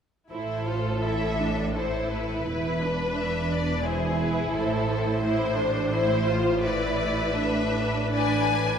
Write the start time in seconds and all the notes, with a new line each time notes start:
0.30 A1 A2 E4 A4 C5
0.67 F4
1.04 E4 E5
1.41 D4
1.76 E4 A4 C5
2.11 B4
2.45 E1 E2 E4 B4
2.82 D4
3.14 E5
3.52 D5
3.83 E4 G#4 C5
4.20 B4
4.51 A1 A2 A4 C5
5.20 E4 C5
5.58 D4
5.92 E4 C5
6.29 F4
6.63 E4 B4 D5
7.36 D4 E5
8.12 D4 B4 D5 G#5